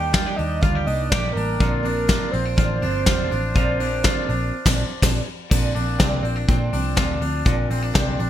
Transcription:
Already playing: picked electric bass D#2, clean electric guitar D#3 G4, steel-string acoustic guitar G3 A#3 D4, soft synth lead G5
0.11 steel-string acoustic guitar D#3 G3 A#3 D4, clean electric guitar F4, kick, snare, closed hi-hat
0.26 clean electric guitar G4
0.36 picked electric bass D#2, steel-string acoustic guitar G3 A#3 D4, soft synth lead D#5, open hi-hat
0.61 picked electric bass D2, steel-string acoustic guitar D#3 G3 A#3 D4, clean electric guitar F4, soft synth lead F5, kick, closed hi-hat
0.75 clean electric guitar G4
0.86 picked electric bass C2, steel-string acoustic guitar G3 A#3 D4, soft synth lead D#5, open hi-hat
1.10 picked electric bass A#1, steel-string acoustic guitar D#3 G3 A#3 D4, clean electric guitar G4, soft synth lead D5, kick, snare, closed hi-hat
1.33 picked electric bass A1, steel-string acoustic guitar A#3 D4, soft synth lead A#4
1.37 steel-string acoustic guitar G3, open hi-hat
1.59 picked electric bass A#1, steel-string acoustic guitar A#2 D3 F3 C4 D4, clean electric guitar F4, kick, closed hi-hat
1.82 steel-string acoustic guitar F3 C4 D4, soft synth lead A#4, open hi-hat
2.07 steel-string acoustic guitar D3 F3 C4 D4, clean electric guitar F4, kick, snare, closed hi-hat
2.31 picked electric bass A#1, steel-string acoustic guitar F3 C4 D4, soft synth lead C5, open hi-hat
2.45 clean electric guitar D4
2.56 picked electric bass A1, steel-string acoustic guitar A#2 D3 F3 C4 D4, clean electric guitar F4, kick, closed hi-hat
2.81 picked electric bass G1, steel-string acoustic guitar F3 C4 D4, open hi-hat
3.05 picked electric bass F1, steel-string acoustic guitar D3 F3 C4 D4, clean electric guitar F4, kick, snare, closed hi-hat
3.30 picked electric bass A1, steel-string acoustic guitar F3 C4 D4, open hi-hat
3.54 picked electric bass A#1, steel-string acoustic guitar A#2 D3 F3 C4 D4, clean electric guitar F4, kick, closed hi-hat
3.80 steel-string acoustic guitar F3 C4 D4, open hi-hat
4.04 steel-string acoustic guitar D3 F3 C4 D4, clean electric guitar F4, kick, snare, closed hi-hat
4.29 picked electric bass A#1, steel-string acoustic guitar F3 C4 D4, open hi-hat
4.65 picked electric bass A#1, steel-string acoustic guitar A#2 D3 F3 C4 D4, kick, snare, crash
5.02 picked electric bass A#1, steel-string acoustic guitar D3 F3 C4 D4, kick, snare, crash
5.51 picked electric bass A#1, steel-string acoustic guitar A#2 D3 F3 C4 D4, kick, crash
5.76 picked electric bass A#1, steel-string acoustic guitar F3 C4 D4, open hi-hat
5.99 picked electric bass C2, steel-string acoustic guitar A#2 D3 F3 C4 D4, kick, snare, closed hi-hat
6.23 picked electric bass A#1, steel-string acoustic guitar F3 C4 D4, open hi-hat
6.36 clean electric guitar D4
6.49 picked electric bass A#2, steel-string acoustic guitar D3 F3 C4 D4, kick, closed hi-hat
6.73 picked electric bass C2, steel-string acoustic guitar F3 C4 D4, open hi-hat
6.96 picked electric bass D2, steel-string acoustic guitar A#2 D3 F3 C4 D4, clean electric guitar F4, kick, snare, closed hi-hat
7.21 picked electric bass D2, steel-string acoustic guitar F3 C4 D4, open hi-hat
7.45 picked electric bass A#1, steel-string acoustic guitar A#2 D3 F3 C4 D4, kick, closed hi-hat
7.70 picked electric bass A#1, steel-string acoustic guitar F3 C4 D4, open hi-hat
7.83 clean electric guitar D4
7.93 picked electric bass C2, steel-string acoustic guitar A#2 D3 F3 C4 D4, kick, snare
8.18 picked electric bass A#1, steel-string acoustic guitar F3 C4 D4, open hi-hat

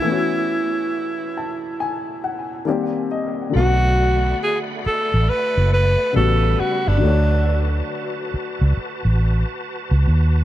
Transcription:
Already playing: tenor saxophone E4
0.02 grand piano E3 A3
0.07 grand piano B3 C#4
0.12 grand piano F#4
1.37 grand piano A5
1.80 grand piano G#5
2.24 grand piano F#5
2.65 grand piano D#3 G3 A#3 C4 D5
2.70 grand piano G4
3.11 grand piano D#5
3.49 grand piano D3 F#3, tonewheel organ A3
3.54 fingered electric bass B1, grand piano A3 B3, tenor saxophone F#4, tonewheel organ D5 F#5 B5
3.60 grand piano F#4
4.43 tenor saxophone G#4
4.86 tenor saxophone A4, muted fingered electric bass stroke
5.14 fingered electric bass A1
5.29 tenor saxophone B4
5.57 fingered electric bass F#1
5.73 tenor saxophone B4
6.13 fingered electric bass A1, grand piano C#3 G3 A3 B3, tonewheel organ G3 B4, tenor saxophone A4
6.18 grand piano F#4
6.60 tenor saxophone F#4, muted fingered electric bass stroke
6.88 fingered electric bass G1, tenor saxophone D4
6.98 grand piano D3 F#3, tonewheel organ F#4 A5
7.03 fingered electric bass D2, grand piano A3 C#5
7.08 grand piano F#4
8.34 muted fingered electric bass stroke
8.61 fingered electric bass C#2
8.77 muted fingered electric bass stroke
9.05 fingered electric bass A1
9.91 fingered electric bass C#2
10.08 fingered electric bass D#2

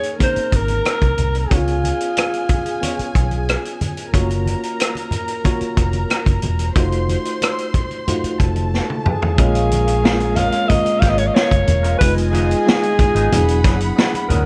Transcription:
Already playing: reed electric piano A#3 C#4 D#4 G#4, string section G#4 G#5, alto saxophone C#5
0.03 closed hi-hat
0.19 reed electric piano A#3 C4 D#4 G#4 C5, string section A#4 A#5, kick, closed hi-hat, high conga
0.23 reed electric piano C#4, alto saxophone C5
0.36 muted fingered electric bass stroke, closed hi-hat
0.52 fingered electric bass G#1, alto saxophone A#4, kick, closed hi-hat
0.68 closed hi-hat, high conga
0.85 cross-stick, closed hi-hat, muted conga
1.02 fingered electric bass C2, kick, closed hi-hat, muted conga
1.18 fingered electric bass C2, closed hi-hat, high conga, low conga
1.35 closed hi-hat
1.40 alto saxophone F4
1.50 fingered electric bass C#2, reed electric piano B3 C#4 D#4 G#4 C#5, string section G#4 G#5, kick, closed hi-hat, muted conga
1.57 reed electric piano F4
1.67 closed hi-hat, muted conga
1.84 closed hi-hat, high conga
2.00 closed hi-hat
2.17 cross-stick, closed hi-hat, muted conga
2.34 closed hi-hat
2.49 kick, closed hi-hat, high conga, low conga
2.66 closed hi-hat
2.81 reed electric piano B3 C#4 F4 G#4 C#5, closed hi-hat, muted conga, high conga
2.99 muted fingered electric bass stroke, closed hi-hat, muted conga
3.15 fingered electric bass B1, kick, closed hi-hat
3.31 closed hi-hat, high conga
3.49 cross-stick, closed hi-hat, muted conga
3.65 closed hi-hat
3.81 closed hi-hat, high conga, low conga
3.97 closed hi-hat
4.13 fingered electric bass F#1, reed electric piano A3 C#4 F4 F#4 C#5, string section A#4 A#5, kick, closed hi-hat
4.20 reed electric piano A#3
4.30 closed hi-hat, muted conga
4.46 closed hi-hat, high conga
4.63 closed hi-hat
4.80 cross-stick, closed hi-hat
4.95 closed hi-hat, muted conga
5.11 closed hi-hat, high conga, low conga
5.28 closed hi-hat
5.44 reed electric piano A#3 C#4 F4 F#4 C#5, kick, closed hi-hat, high conga
5.61 muted fingered electric bass stroke, closed hi-hat
5.77 fingered electric bass F1, kick, cross-stick, closed hi-hat
5.93 closed hi-hat, high conga
6.10 cross-stick, closed hi-hat, muted conga
6.26 fingered electric bass F#1, kick, closed hi-hat, muted conga
6.42 fingered electric bass E1, closed hi-hat, high conga, low conga
6.59 closed hi-hat
6.75 fingered electric bass F1, reed electric piano A3 D#4 F4 F#4 C5, string section C5 C6, kick, closed hi-hat, muted conga
6.92 closed hi-hat
7.09 closed hi-hat, high conga
7.25 closed hi-hat
7.42 cross-stick, closed hi-hat, muted conga
7.58 closed hi-hat
7.74 kick, closed hi-hat, high conga, low conga
7.91 closed hi-hat
8.07 reed electric piano A3 D#4 F4 F#4 C5, closed hi-hat, muted conga, high conga, low conga
8.24 muted fingered electric bass stroke, closed hi-hat, muted conga
8.40 fingered electric bass F1, string section A3 A5, kick, cross-stick, closed hi-hat
8.56 closed hi-hat, high conga
8.74 snare, muted conga
8.90 high tom
9.06 alto saxophone G#4, mid tom, high conga, low conga
9.22 floor tom
9.38 fingered electric bass A#1, clean electric guitar G#3 C#4 F4 G#4, reed electric piano G#3 A#3 C#4 F4 A#4, string section C#4 A#4 F5, kick, closed hi-hat, muted conga
9.55 closed hi-hat
9.71 closed hi-hat, high conga
9.88 muted clean electric guitar stroke, closed hi-hat
10.04 reed electric piano G#3 A#3 C4 F4 A#4, muted clean electric guitar stroke, snare
10.11 reed electric piano C#4
10.20 muted clean electric guitar stroke, closed hi-hat
10.36 clean electric guitar G#3 C#4 F4 G#4, alto saxophone F5, closed hi-hat, high conga, low conga
10.52 clean electric guitar G#3 C#4 F4 G#4, closed hi-hat
10.69 reed electric piano G#3 A#3 C#4 F4 A#4, alto saxophone D#5, muted clean electric guitar stroke, kick, closed hi-hat, high conga, low conga
10.85 muted clean electric guitar stroke, closed hi-hat
11.00 fingered electric bass G#1, clean electric guitar G#3 C#4 F4 G#4, alto saxophone F5, kick, snare, closed hi-hat
11.09 alto saxophone D#5
11.18 alto saxophone C#5, muted clean electric guitar stroke, closed hi-hat
11.27 alto saxophone D#5
11.34 clean electric guitar G#3 C#4 F4 G#4, alto saxophone C#5, snare
11.51 fingered electric bass F#1, kick, closed hi-hat, muted conga
11.67 fingered electric bass E1, muted clean electric guitar stroke, closed hi-hat, high conga, low conga
11.83 clean electric guitar G#3 C#4 F4 A#4, closed hi-hat
11.99 fingered electric bass F1, reed electric piano G#3 B3 D#4 F4 B4, string section F4 D#5 G#5, alto saxophone B4, kick, closed hi-hat, muted conga
12.18 closed hi-hat
12.31 clean electric guitar F3 B3 D#4 G#4, alto saxophone G#4, closed hi-hat, high conga
12.51 closed hi-hat
12.66 reed electric piano G#3 B3 D#4 F4 G#4, muted clean electric guitar stroke, snare
12.82 muted clean electric guitar stroke, closed hi-hat
12.99 muted fingered electric bass stroke, kick, closed hi-hat, high conga, low conga
13.15 fingered electric bass G#1, clean electric guitar F3 B3 D#4 G#4, closed hi-hat
13.32 fingered electric bass E1, reed electric piano F#3 B3 D4 E4 G#4, string section G#4 F#5 B5, muted clean electric guitar stroke, closed hi-hat, high conga, low conga
13.48 closed hi-hat, muted conga
13.64 fingered electric bass F#1, clean electric guitar F#3 B3 D4 G#4, kick, snare, closed hi-hat
13.80 muted clean electric guitar stroke, closed hi-hat
13.96 muted clean electric guitar stroke, snare
14.12 muted clean electric guitar stroke, closed hi-hat, muted conga
14.29 fingered electric bass D2, clean electric guitar F#3 B3 D4 G#4, alto saxophone A#4, closed hi-hat, high conga, low conga

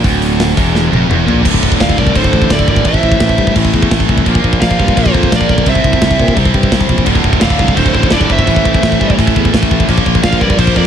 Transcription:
0.03 fingered electric bass D1, distorted electric guitar D2, kick, open hi-hat
0.22 open hi-hat
0.40 snare, open hi-hat
0.56 fingered electric bass E1, distorted electric guitar E2, kick, open hi-hat
0.75 snare
0.91 fingered electric bass F1, distorted electric guitar F2, high tom
1.09 fingered electric bass E1, distorted electric guitar E2, mid tom
1.26 fingered electric bass A#1, distorted electric guitar A#2, floor tom
1.43 fingered electric bass D1, distorted electric guitar D2 A2 D3, pipe organ D3 A3 E4, kick, crash
1.54 kick
1.63 fingered electric bass D1, kick
1.72 kick
1.80 fingered electric bass D1, lead electric guitar D5 F5, kick, snare, crash
1.89 kick
1.98 fingered electric bass C2, lead electric guitar A#4 D5, kick
2.07 kick
2.14 fingered electric bass D1, distorted electric guitar D2 A2 D3, lead electric guitar A4 C5, kick, crash
2.24 kick
2.33 fingered electric bass A1, kick
2.42 kick
2.50 fingered electric bass D1, lead electric guitar A4 D5, kick, snare, crash
2.59 kick
2.68 fingered electric bass G#1, lead electric guitar A#4 D5, kick
2.76 kick
2.84 fingered electric bass A1, distorted electric guitar A2 E3 A3, pipe organ A4, lead electric guitar C5 E5, kick, crash
2.94 kick
3.03 fingered electric bass A1, kick
3.12 kick
3.20 fingered electric bass A1, kick, snare, crash
3.29 kick
3.38 fingered electric bass G2, kick
3.47 kick
3.56 fingered electric bass A1, distorted electric guitar A2 E3 A3, kick, crash
3.65 kick
3.74 fingered electric bass E2, kick
3.83 kick
3.91 fingered electric bass A1, kick, snare, crash
4.00 kick
4.09 fingered electric bass C2, kick
4.18 kick
4.25 fingered electric bass A#1, distorted electric guitar A#2 F3 A#3, pipe organ A#3 F4 C5, kick, crash
4.35 kick
4.44 fingered electric bass A#1, kick
4.53 kick
4.60 fingered electric bass A#1, lead electric guitar D5 F5, kick, snare, crash
4.71 kick
4.79 fingered electric bass G2, kick
4.88 kick
4.95 fingered electric bass A#1, distorted electric guitar A#2 F3 A#3, lead electric guitar F4 C5, kick, crash
5.06 kick
5.14 fingered electric bass F2, kick
5.23 kick
5.32 fingered electric bass A#1, lead electric guitar A#4 D5, kick, snare, crash
5.41 kick
5.49 fingered electric bass B1, kick
5.58 kick
5.66 fingered electric bass C2, distorted electric guitar C3 G3 C4, pipe organ C3 G3 D4, lead electric guitar C5, kick, crash
5.70 lead electric guitar E5
5.75 kick
5.84 fingered electric bass C2, kick
5.93 kick
6.02 fingered electric bass C2, kick, snare, crash
6.11 kick
6.19 fingered electric bass A#2, kick
6.28 kick
6.35 fingered electric bass C2, distorted electric guitar C3 G3 C4, kick, crash
6.45 kick
6.54 fingered electric bass G2, kick
6.63 kick
6.72 fingered electric bass C2, kick, snare, crash
6.81 kick
6.89 fingered electric bass A#1, kick
6.98 kick
7.05 fingered electric bass D1, distorted electric guitar D2 A2 D3, pipe organ D3 E3 A3, kick, crash
7.15 kick
7.23 fingered electric bass D1, distorted electric guitar D2 A2 D3, kick
7.33 kick
7.41 fingered electric bass D1, distorted electric guitar D2 A2 D3, lead electric guitar D5 F5, kick, snare, crash
7.50 kick
7.57 fingered electric bass C2, distorted electric guitar D2 A2 D3, kick
7.68 kick
7.75 fingered electric bass D1, distorted electric guitar D2 A2 D3, lead electric guitar A4 C5, kick, crash
7.86 kick
7.93 fingered electric bass A1, distorted electric guitar D2 A2 D3, lead electric guitar A4 C5, kick
8.03 kick
8.11 fingered electric bass D1, distorted electric guitar D2 A2 D3, lead electric guitar A4 D5, kick, snare, crash
8.21 kick
8.28 fingered electric bass G1, distorted electric guitar D2 A2 D3, lead electric guitar C5, kick
8.32 lead electric guitar E5
8.39 kick
8.45 fingered electric bass A1, distorted electric guitar A2 E3 A3, pipe organ A3 E4 A4, kick, crash
8.56 kick
8.63 fingered electric bass A1, distorted electric guitar A2 E3 A3, kick
8.74 kick
8.80 fingered electric bass A1, distorted electric guitar A2 E3 A3, kick, snare, crash
8.92 kick
8.98 fingered electric bass G2, distorted electric guitar A2 E3 A3, kick
9.10 kick
9.16 fingered electric bass A1, distorted electric guitar A2 E3 A3, kick, crash
9.27 kick
9.35 fingered electric bass E2, distorted electric guitar A2 E3 A3, kick
9.45 kick
9.52 fingered electric bass A1, distorted electric guitar A2 E3 A3, kick, snare, crash
9.63 kick
9.69 fingered electric bass A1, distorted electric guitar A2 E3 A3, kick
9.80 kick
9.87 fingered electric bass A#1, distorted electric guitar A#2 F3 A#3, pipe organ A#3 F4 C5, kick, crash
9.98 kick
10.05 fingered electric bass A#1, distorted electric guitar A#2 F3 A#3, kick
10.15 kick
10.22 fingered electric bass A#1, distorted electric guitar A#2 F3 A#3, lead electric guitar D5 F5, kick, snare, crash
10.33 kick
10.39 fingered electric bass G2, distorted electric guitar A#2 F3 A#3, lead electric guitar A#4 D5, kick
10.50 kick
10.56 fingered electric bass A#1, distorted electric guitar A#2 F3 A#3, lead electric guitar F4 C5, kick, crash
10.60 distorted electric guitar A#3
10.67 kick
10.73 fingered electric bass F2, distorted electric guitar A#2 F3 A#3, lead electric guitar A#4 D5, kick

